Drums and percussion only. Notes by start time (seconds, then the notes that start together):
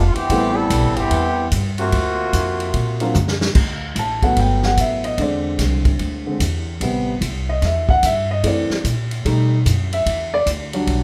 0.15 ride
0.30 kick, ride
0.70 kick, hi-hat pedal, ride
0.96 ride
1.11 kick, ride
1.51 kick, hi-hat pedal, ride
1.78 ride
1.92 kick, ride
2.33 kick, hi-hat pedal, ride
2.60 ride
2.74 kick, ride
3.00 ride
3.14 hi-hat pedal, mid tom
3.28 snare
3.41 snare
3.55 kick, crash
3.96 kick, hi-hat pedal, ride
4.22 kick, ride
4.36 kick, ride
4.63 snare
4.77 kick, hi-hat pedal, ride
5.04 ride
5.18 kick, ride
5.59 kick, snare, hi-hat pedal, ride
5.85 kick, ride
5.99 kick, ride
6.40 kick, hi-hat pedal, ride
6.81 kick, ride
7.22 kick, hi-hat pedal, ride
7.62 kick, snare, ride
7.89 kick
8.03 kick, hi-hat pedal, ride
8.44 kick, ride
8.70 snare
8.84 kick, hi-hat pedal, ride
9.11 ride
9.25 kick, ride
9.66 kick, hi-hat pedal, ride
9.93 ride
10.06 kick, ride
10.47 kick, hi-hat pedal, ride
10.73 ride
10.87 kick, ride